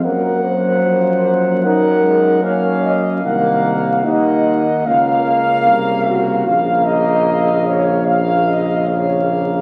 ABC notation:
X:1
M:4/4
L:1/8
Q:1/4=75
K:Bbm
V:1 name="Trumpet section"
g4 g2 f2 | g2 g2 f4 | f4 f2 f2 |]
V:2 name="French horn section"
B c3 B2 d e | f2 e2 f3 G | f e2 d f e d z |]
V:3 name="Trombone section"
B,4 E2 D2 | B,2 B,2 B,4 | B,4 B,2 B,2 |]
V:4 name="Trombone" clef=bass
G,2 F,2 G, A, B,2 | E,2 E,2 D,4 | D,4 D,2 D,2 |]
V:5 name="Tuba" clef=bass
G,,8 | C,,2 E,,2 D,,2 C,,2 | B,,,8 |]